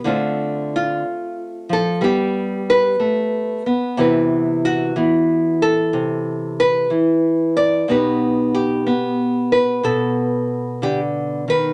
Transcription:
0, 0, Header, 1, 2, 480
1, 0, Start_track
1, 0, Tempo, 978793
1, 25, Time_signature, 4, 2, 24, 8
1, 5754, End_track
2, 0, Start_track
2, 0, Title_t, "Nylon-string guitar"
2, 0, Program_c, 0, 24
2, 21, Note_on_c, 0, 50, 71
2, 26, Note_on_c, 0, 57, 51
2, 30, Note_on_c, 0, 60, 50
2, 33, Note_on_c, 0, 65, 48
2, 38, Note_on_c, 0, 72, 48
2, 352, Note_off_c, 0, 65, 0
2, 372, Note_on_c, 0, 65, 81
2, 503, Note_off_c, 0, 50, 0
2, 831, Note_on_c, 0, 53, 62
2, 835, Note_off_c, 0, 72, 0
2, 848, Note_on_c, 0, 69, 84
2, 967, Note_off_c, 0, 57, 0
2, 969, Note_off_c, 0, 60, 0
2, 986, Note_off_c, 0, 53, 0
2, 986, Note_on_c, 0, 55, 73
2, 989, Note_on_c, 0, 59, 49
2, 995, Note_off_c, 0, 69, 0
2, 997, Note_off_c, 0, 65, 0
2, 1000, Note_on_c, 0, 67, 85
2, 1323, Note_on_c, 0, 71, 98
2, 1467, Note_off_c, 0, 55, 0
2, 1469, Note_on_c, 0, 57, 58
2, 1790, Note_off_c, 0, 57, 0
2, 1796, Note_off_c, 0, 59, 0
2, 1796, Note_off_c, 0, 67, 0
2, 1796, Note_on_c, 0, 59, 57
2, 1948, Note_on_c, 0, 48, 72
2, 1949, Note_off_c, 0, 59, 0
2, 1951, Note_on_c, 0, 52, 51
2, 1953, Note_off_c, 0, 71, 0
2, 1956, Note_on_c, 0, 59, 49
2, 1958, Note_on_c, 0, 66, 47
2, 1963, Note_on_c, 0, 71, 49
2, 2275, Note_off_c, 0, 66, 0
2, 2280, Note_on_c, 0, 66, 89
2, 2426, Note_off_c, 0, 52, 0
2, 2427, Note_off_c, 0, 48, 0
2, 2432, Note_on_c, 0, 52, 62
2, 2433, Note_off_c, 0, 59, 0
2, 2435, Note_on_c, 0, 59, 46
2, 2755, Note_off_c, 0, 66, 0
2, 2757, Note_on_c, 0, 69, 97
2, 2908, Note_on_c, 0, 48, 63
2, 3234, Note_off_c, 0, 71, 0
2, 3236, Note_on_c, 0, 71, 84
2, 3378, Note_off_c, 0, 52, 0
2, 3384, Note_on_c, 0, 52, 58
2, 3387, Note_off_c, 0, 48, 0
2, 3390, Note_off_c, 0, 69, 0
2, 3709, Note_off_c, 0, 71, 0
2, 3711, Note_on_c, 0, 74, 99
2, 3846, Note_off_c, 0, 52, 0
2, 3864, Note_on_c, 0, 47, 70
2, 3867, Note_off_c, 0, 74, 0
2, 3871, Note_off_c, 0, 59, 0
2, 3871, Note_on_c, 0, 59, 49
2, 3873, Note_on_c, 0, 63, 49
2, 3876, Note_on_c, 0, 67, 50
2, 3880, Note_on_c, 0, 71, 50
2, 4189, Note_off_c, 0, 67, 0
2, 4191, Note_on_c, 0, 67, 89
2, 4346, Note_off_c, 0, 59, 0
2, 4348, Note_on_c, 0, 59, 60
2, 4350, Note_off_c, 0, 63, 0
2, 4667, Note_off_c, 0, 71, 0
2, 4669, Note_on_c, 0, 71, 85
2, 4817, Note_off_c, 0, 47, 0
2, 4823, Note_on_c, 0, 47, 67
2, 4826, Note_off_c, 0, 67, 0
2, 4828, Note_on_c, 0, 69, 88
2, 5306, Note_off_c, 0, 71, 0
2, 5306, Note_on_c, 0, 50, 54
2, 5307, Note_off_c, 0, 69, 0
2, 5311, Note_on_c, 0, 67, 87
2, 5390, Note_off_c, 0, 67, 0
2, 5626, Note_off_c, 0, 50, 0
2, 5628, Note_on_c, 0, 51, 57
2, 5639, Note_on_c, 0, 71, 94
2, 5754, Note_off_c, 0, 47, 0
2, 5754, Note_off_c, 0, 51, 0
2, 5754, Note_off_c, 0, 59, 0
2, 5754, Note_off_c, 0, 71, 0
2, 5754, End_track
0, 0, End_of_file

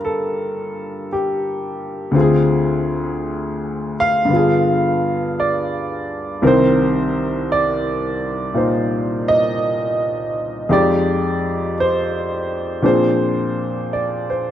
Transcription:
0, 0, Header, 1, 2, 480
1, 0, Start_track
1, 0, Key_signature, -2, "minor"
1, 0, Tempo, 1071429
1, 961, Time_signature, 4, 2, 24, 8
1, 6500, End_track
2, 0, Start_track
2, 0, Title_t, "Upright piano"
2, 0, Program_c, 0, 0
2, 0, Control_c, 0, 64, 127
2, 0, Note_on_c, 0, 43, 49
2, 0, Note_on_c, 0, 50, 51
2, 0, Note_on_c, 0, 58, 46
2, 0, Note_on_c, 0, 65, 43
2, 0, Note_on_c, 0, 67, 57
2, 0, Note_on_c, 0, 70, 73
2, 21, Note_on_c, 0, 69, 54
2, 473, Note_off_c, 0, 69, 0
2, 498, Note_off_c, 0, 67, 0
2, 504, Note_on_c, 0, 67, 58
2, 945, Note_off_c, 0, 50, 0
2, 947, Note_on_c, 0, 38, 47
2, 948, Note_off_c, 0, 43, 0
2, 951, Note_on_c, 0, 50, 44
2, 956, Note_off_c, 0, 67, 0
2, 959, Note_on_c, 0, 60, 45
2, 960, Note_off_c, 0, 58, 0
2, 960, Note_off_c, 0, 65, 0
2, 966, Note_on_c, 0, 65, 50
2, 967, Control_c, 0, 64, 0
2, 968, Note_off_c, 0, 70, 0
2, 969, Note_on_c, 0, 68, 55
2, 982, Note_off_c, 0, 68, 0
2, 989, Note_on_c, 0, 68, 68
2, 1038, Control_c, 0, 64, 127
2, 1762, Note_off_c, 0, 68, 0
2, 1792, Note_on_c, 0, 77, 89
2, 1905, Note_on_c, 0, 43, 47
2, 1911, Note_off_c, 0, 50, 0
2, 1918, Note_off_c, 0, 38, 0
2, 1918, Note_on_c, 0, 50, 44
2, 1924, Note_off_c, 0, 60, 0
2, 1928, Note_off_c, 0, 65, 0
2, 1929, Note_on_c, 0, 59, 43
2, 1930, Control_c, 0, 64, 0
2, 1940, Note_on_c, 0, 65, 47
2, 1955, Note_on_c, 0, 68, 57
2, 2001, Control_c, 0, 64, 127
2, 2397, Note_off_c, 0, 77, 0
2, 2418, Note_on_c, 0, 74, 64
2, 2869, Note_off_c, 0, 43, 0
2, 2869, Note_off_c, 0, 74, 0
2, 2876, Note_off_c, 0, 50, 0
2, 2877, Note_on_c, 0, 36, 52
2, 2878, Note_on_c, 0, 48, 51
2, 2880, Note_on_c, 0, 51, 48
2, 2880, Note_on_c, 0, 60, 55
2, 2882, Note_off_c, 0, 59, 0
2, 2882, Note_on_c, 0, 70, 61
2, 2886, Control_c, 0, 64, 0
2, 2887, Note_off_c, 0, 65, 0
2, 2895, Note_off_c, 0, 68, 0
2, 2899, Note_on_c, 0, 72, 69
2, 2962, Control_c, 0, 64, 127
2, 3349, Note_off_c, 0, 72, 0
2, 3369, Note_on_c, 0, 74, 74
2, 3827, Note_on_c, 0, 46, 42
2, 3831, Note_on_c, 0, 63, 36
2, 3834, Note_on_c, 0, 65, 36
2, 3841, Note_on_c, 0, 72, 47
2, 4141, Note_off_c, 0, 74, 0
2, 4159, Note_on_c, 0, 75, 80
2, 4775, Note_off_c, 0, 75, 0
2, 4786, Note_off_c, 0, 46, 0
2, 4788, Note_off_c, 0, 63, 0
2, 4789, Note_off_c, 0, 36, 0
2, 4789, Note_off_c, 0, 48, 0
2, 4790, Note_off_c, 0, 51, 0
2, 4790, Note_off_c, 0, 60, 0
2, 4790, Note_off_c, 0, 65, 0
2, 4791, Note_off_c, 0, 70, 0
2, 4791, Note_on_c, 0, 41, 51
2, 4792, Note_on_c, 0, 53, 43
2, 4793, Note_off_c, 0, 72, 0
2, 4796, Control_c, 0, 64, 0
2, 4796, Note_on_c, 0, 56, 44
2, 4796, Note_on_c, 0, 63, 44
2, 4798, Note_on_c, 0, 67, 63
2, 4806, Note_on_c, 0, 74, 70
2, 4876, Control_c, 0, 64, 127
2, 5258, Note_off_c, 0, 74, 0
2, 5288, Note_on_c, 0, 72, 70
2, 5739, Note_off_c, 0, 53, 0
2, 5741, Note_off_c, 0, 72, 0
2, 5745, Note_on_c, 0, 46, 47
2, 5746, Note_on_c, 0, 53, 43
2, 5749, Note_off_c, 0, 41, 0
2, 5751, Note_on_c, 0, 60, 40
2, 5751, Note_on_c, 0, 62, 44
2, 5752, Note_off_c, 0, 56, 0
2, 5752, Note_off_c, 0, 63, 0
2, 5753, Note_off_c, 0, 67, 0
2, 5754, Control_c, 0, 64, 0
2, 5756, Note_on_c, 0, 68, 49
2, 5760, Note_on_c, 0, 72, 68
2, 5827, Control_c, 0, 64, 127
2, 6241, Note_on_c, 0, 74, 47
2, 6399, Note_off_c, 0, 72, 0
2, 6406, Note_on_c, 0, 72, 45
2, 6500, Note_off_c, 0, 46, 0
2, 6500, Note_off_c, 0, 53, 0
2, 6500, Note_off_c, 0, 60, 0
2, 6500, Note_off_c, 0, 62, 0
2, 6500, Note_off_c, 0, 68, 0
2, 6500, Note_off_c, 0, 72, 0
2, 6500, Note_off_c, 0, 74, 0
2, 6500, End_track
0, 0, End_of_file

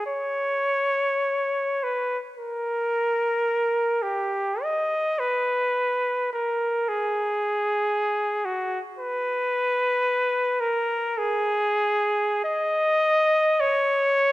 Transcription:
0, 0, Header, 1, 2, 480
1, 0, Start_track
1, 0, Key_signature, 5, "minor"
1, 0, Tempo, 1207243
1, 30, Time_signature, 4, 2, 24, 8
1, 507, Tempo, 1098901
1, 1467, Tempo, 1145038
1, 2427, Tempo, 1102941
1, 2907, Tempo, 1058201
1, 4347, Tempo, 1125704
1, 4827, Tempo, 1279318
1, 5307, Tempo, 1136364
1, 6100, End_track
2, 0, Start_track
2, 0, Title_t, "Trumpet"
2, 0, Program_c, 0, 56
2, 27, Note_on_c, 0, 73, 61
2, 752, Note_on_c, 0, 71, 51
2, 759, Note_off_c, 0, 73, 0
2, 903, Note_off_c, 0, 71, 0
2, 987, Note_on_c, 0, 70, 59
2, 1699, Note_on_c, 0, 67, 53
2, 1705, Note_off_c, 0, 70, 0
2, 1951, Note_on_c, 0, 75, 63
2, 1958, Note_off_c, 0, 67, 0
2, 2188, Note_on_c, 0, 71, 60
2, 2195, Note_off_c, 0, 75, 0
2, 2672, Note_off_c, 0, 71, 0
2, 2674, Note_on_c, 0, 70, 56
2, 2914, Note_on_c, 0, 68, 65
2, 2921, Note_off_c, 0, 70, 0
2, 3626, Note_on_c, 0, 66, 53
2, 3633, Note_off_c, 0, 68, 0
2, 3782, Note_off_c, 0, 66, 0
2, 3869, Note_on_c, 0, 71, 71
2, 4589, Note_on_c, 0, 70, 61
2, 4595, Note_off_c, 0, 71, 0
2, 4833, Note_on_c, 0, 68, 65
2, 4838, Note_off_c, 0, 70, 0
2, 5305, Note_off_c, 0, 68, 0
2, 5307, Note_on_c, 0, 75, 75
2, 5797, Note_on_c, 0, 73, 76
2, 5803, Note_off_c, 0, 75, 0
2, 6100, Note_off_c, 0, 73, 0
2, 6100, End_track
0, 0, End_of_file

